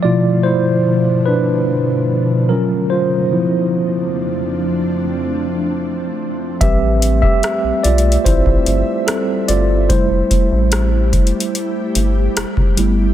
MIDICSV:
0, 0, Header, 1, 5, 480
1, 0, Start_track
1, 0, Tempo, 821918
1, 20, Time_signature, 4, 2, 24, 8
1, 7673, End_track
2, 0, Start_track
2, 0, Title_t, "Tine electric piano"
2, 0, Program_c, 0, 4
2, 0, Control_c, 0, 64, 127
2, 15, Note_on_c, 0, 74, 97
2, 20, Note_on_c, 0, 53, 55
2, 23, Note_on_c, 0, 57, 46
2, 25, Note_on_c, 0, 47, 48
2, 27, Note_on_c, 0, 64, 57
2, 28, Note_on_c, 0, 65, 80
2, 248, Note_off_c, 0, 65, 0
2, 253, Note_on_c, 0, 72, 94
2, 260, Note_off_c, 0, 64, 0
2, 265, Note_off_c, 0, 74, 0
2, 267, Note_on_c, 0, 64, 73
2, 717, Note_off_c, 0, 53, 0
2, 718, Note_off_c, 0, 57, 0
2, 719, Note_off_c, 0, 47, 0
2, 720, Note_off_c, 0, 64, 0
2, 733, Note_on_c, 0, 71, 91
2, 747, Note_on_c, 0, 62, 69
2, 751, Note_off_c, 0, 72, 0
2, 1440, Note_off_c, 0, 62, 0
2, 1454, Note_on_c, 0, 70, 81
2, 1458, Note_on_c, 0, 54, 56
2, 1462, Note_on_c, 0, 61, 64
2, 1465, Note_on_c, 0, 65, 58
2, 1467, Control_c, 0, 64, 0
2, 1479, Note_off_c, 0, 71, 0
2, 1558, Control_c, 0, 64, 127
2, 1687, Note_off_c, 0, 61, 0
2, 1693, Note_on_c, 0, 72, 84
2, 1700, Note_off_c, 0, 65, 0
2, 1705, Note_off_c, 0, 70, 0
2, 1707, Note_on_c, 0, 65, 63
2, 1779, Note_off_c, 0, 54, 0
2, 1938, Note_on_c, 0, 53, 54
2, 1942, Note_on_c, 0, 60, 48
2, 1946, Note_on_c, 0, 64, 56
2, 1948, Control_c, 0, 64, 0
2, 2062, Control_c, 0, 64, 127
2, 3114, Note_off_c, 0, 72, 0
2, 3120, Note_off_c, 0, 65, 0
2, 3836, Note_off_c, 0, 53, 0
2, 3838, Note_off_c, 0, 60, 0
2, 3840, Note_off_c, 0, 64, 0
2, 3859, Note_on_c, 0, 76, 94
2, 3861, Note_on_c, 0, 55, 50
2, 3865, Note_on_c, 0, 71, 48
2, 3868, Note_on_c, 0, 60, 56
2, 3869, Control_c, 0, 64, 0
2, 3870, Note_on_c, 0, 67, 78
2, 3976, Control_c, 0, 64, 127
2, 4202, Note_off_c, 0, 67, 0
2, 4209, Note_off_c, 0, 76, 0
2, 4216, Note_on_c, 0, 76, 92
2, 4229, Note_on_c, 0, 67, 72
2, 4561, Note_off_c, 0, 67, 0
2, 4575, Note_on_c, 0, 74, 93
2, 4588, Note_on_c, 0, 65, 75
2, 4589, Note_off_c, 0, 76, 0
2, 4684, Note_off_c, 0, 74, 0
2, 4694, Note_off_c, 0, 65, 0
2, 4815, Note_on_c, 0, 72, 87
2, 4828, Note_on_c, 0, 64, 67
2, 5281, Note_off_c, 0, 64, 0
2, 5296, Note_on_c, 0, 69, 87
2, 5302, Note_off_c, 0, 60, 0
2, 5309, Note_on_c, 0, 60, 67
2, 5312, Note_off_c, 0, 72, 0
2, 5528, Note_off_c, 0, 60, 0
2, 5537, Note_on_c, 0, 74, 89
2, 5545, Note_off_c, 0, 69, 0
2, 5550, Note_on_c, 0, 65, 70
2, 5646, Note_off_c, 0, 74, 0
2, 5656, Note_off_c, 0, 65, 0
2, 5757, Note_off_c, 0, 55, 0
2, 5759, Note_off_c, 0, 71, 0
2, 5776, Note_on_c, 0, 72, 80
2, 5782, Note_on_c, 0, 55, 51
2, 5785, Note_on_c, 0, 57, 47
2, 5788, Note_on_c, 0, 64, 63
2, 5789, Control_c, 0, 64, 0
2, 5902, Control_c, 0, 64, 127
2, 7435, Note_off_c, 0, 72, 0
2, 7438, Note_off_c, 0, 55, 0
2, 7440, Note_off_c, 0, 57, 0
2, 7441, Note_off_c, 0, 64, 0
2, 7458, Note_on_c, 0, 55, 57
2, 7461, Note_on_c, 0, 57, 49
2, 7463, Note_on_c, 0, 59, 48
2, 7466, Note_on_c, 0, 64, 63
2, 7468, Control_c, 0, 64, 0
2, 7566, Control_c, 0, 64, 127
2, 7673, Note_off_c, 0, 55, 0
2, 7673, Note_off_c, 0, 57, 0
2, 7673, Note_off_c, 0, 59, 0
2, 7673, Note_off_c, 0, 64, 0
2, 7673, End_track
3, 0, Start_track
3, 0, Title_t, "Ambient pad"
3, 0, Program_c, 1, 92
3, 0, Note_on_c, 1, 43, 82
3, 0, Note_on_c, 1, 47, 68
3, 0, Note_on_c, 1, 50, 75
3, 0, Note_on_c, 1, 53, 89
3, 0, Note_on_c, 1, 57, 71
3, 1436, Note_off_c, 1, 57, 0
3, 1437, Note_off_c, 1, 53, 0
3, 1443, Note_off_c, 1, 43, 0
3, 1443, Note_off_c, 1, 47, 0
3, 1443, Note_off_c, 1, 50, 0
3, 1940, Note_on_c, 1, 41, 78
3, 1940, Note_on_c, 1, 53, 75
3, 1940, Note_on_c, 1, 57, 72
3, 1940, Note_on_c, 1, 60, 74
3, 1940, Note_on_c, 1, 62, 92
3, 3841, Note_off_c, 1, 41, 0
3, 3841, Note_off_c, 1, 53, 0
3, 3841, Note_off_c, 1, 62, 0
3, 3860, Note_on_c, 1, 55, 70
3, 3860, Note_on_c, 1, 76, 85
3, 5757, Note_off_c, 1, 60, 0
3, 5761, Note_off_c, 1, 76, 0
3, 5779, Note_on_c, 1, 67, 85
3, 5780, Note_on_c, 1, 64, 81
3, 7437, Note_off_c, 1, 55, 0
3, 7443, Note_off_c, 1, 64, 0
3, 7460, Note_on_c, 1, 50, 80
3, 7460, Note_on_c, 1, 71, 73
3, 7673, Note_off_c, 1, 50, 0
3, 7673, Note_off_c, 1, 57, 0
3, 7673, Note_off_c, 1, 67, 0
3, 7673, Note_off_c, 1, 71, 0
3, 7673, End_track
4, 0, Start_track
4, 0, Title_t, "Analog synth bass"
4, 0, Program_c, 2, 38
4, 3860, Note_on_c, 2, 33, 102
4, 4240, Note_off_c, 2, 33, 0
4, 4462, Note_on_c, 2, 35, 45
4, 4509, Note_off_c, 2, 35, 0
4, 4582, Note_on_c, 2, 35, 95
4, 4772, Note_off_c, 2, 35, 0
4, 4822, Note_on_c, 2, 33, 83
4, 5011, Note_off_c, 2, 33, 0
4, 5063, Note_on_c, 2, 31, 98
4, 5157, Note_off_c, 2, 31, 0
4, 5541, Note_on_c, 2, 31, 89
4, 5780, Note_on_c, 2, 29, 114
4, 5789, Note_off_c, 2, 31, 0
4, 5970, Note_off_c, 2, 29, 0
4, 6142, Note_on_c, 2, 33, 87
4, 6521, Note_off_c, 2, 33, 0
4, 6982, Note_on_c, 2, 31, 95
4, 7171, Note_off_c, 2, 31, 0
4, 7222, Note_on_c, 2, 29, 52
4, 7269, Note_off_c, 2, 29, 0
4, 7342, Note_on_c, 2, 29, 83
4, 7436, Note_off_c, 2, 29, 0
4, 7462, Note_on_c, 2, 31, 91
4, 7673, Note_off_c, 2, 31, 0
4, 7673, End_track
5, 0, Start_track
5, 0, Title_t, "Drums"
5, 3860, Note_on_c, 9, 36, 110
5, 3861, Note_on_c, 9, 42, 63
5, 3918, Note_off_c, 9, 36, 0
5, 3920, Note_off_c, 9, 42, 0
5, 4101, Note_on_c, 9, 42, 69
5, 4160, Note_off_c, 9, 42, 0
5, 4220, Note_on_c, 9, 36, 78
5, 4278, Note_off_c, 9, 36, 0
5, 4340, Note_on_c, 9, 42, 56
5, 4345, Note_on_c, 9, 37, 104
5, 4398, Note_off_c, 9, 42, 0
5, 4404, Note_off_c, 9, 37, 0
5, 4581, Note_on_c, 9, 42, 52
5, 4639, Note_off_c, 9, 42, 0
5, 4662, Note_on_c, 9, 42, 51
5, 4720, Note_off_c, 9, 42, 0
5, 4741, Note_on_c, 9, 42, 52
5, 4799, Note_off_c, 9, 42, 0
5, 4821, Note_on_c, 9, 36, 87
5, 4825, Note_on_c, 9, 42, 62
5, 4880, Note_off_c, 9, 36, 0
5, 4884, Note_off_c, 9, 42, 0
5, 4941, Note_on_c, 9, 36, 82
5, 4999, Note_off_c, 9, 36, 0
5, 5060, Note_on_c, 9, 42, 59
5, 5118, Note_off_c, 9, 42, 0
5, 5301, Note_on_c, 9, 42, 78
5, 5304, Note_on_c, 9, 37, 108
5, 5360, Note_off_c, 9, 42, 0
5, 5363, Note_off_c, 9, 37, 0
5, 5539, Note_on_c, 9, 42, 67
5, 5598, Note_off_c, 9, 42, 0
5, 5780, Note_on_c, 9, 36, 106
5, 5781, Note_on_c, 9, 42, 65
5, 5838, Note_off_c, 9, 36, 0
5, 5839, Note_off_c, 9, 42, 0
5, 6019, Note_on_c, 9, 36, 81
5, 6021, Note_on_c, 9, 42, 70
5, 6078, Note_off_c, 9, 36, 0
5, 6079, Note_off_c, 9, 42, 0
5, 6259, Note_on_c, 9, 42, 59
5, 6264, Note_on_c, 9, 37, 102
5, 6317, Note_off_c, 9, 42, 0
5, 6323, Note_off_c, 9, 37, 0
5, 6499, Note_on_c, 9, 36, 94
5, 6500, Note_on_c, 9, 42, 50
5, 6558, Note_off_c, 9, 36, 0
5, 6558, Note_off_c, 9, 42, 0
5, 6581, Note_on_c, 9, 42, 53
5, 6639, Note_off_c, 9, 42, 0
5, 6660, Note_on_c, 9, 42, 50
5, 6718, Note_off_c, 9, 42, 0
5, 6745, Note_on_c, 9, 42, 59
5, 6804, Note_off_c, 9, 42, 0
5, 6981, Note_on_c, 9, 42, 59
5, 7039, Note_off_c, 9, 42, 0
5, 7222, Note_on_c, 9, 42, 69
5, 7225, Note_on_c, 9, 37, 110
5, 7280, Note_off_c, 9, 42, 0
5, 7283, Note_off_c, 9, 37, 0
5, 7341, Note_on_c, 9, 36, 95
5, 7400, Note_off_c, 9, 36, 0
5, 7460, Note_on_c, 9, 42, 63
5, 7519, Note_off_c, 9, 42, 0
5, 7673, End_track
0, 0, End_of_file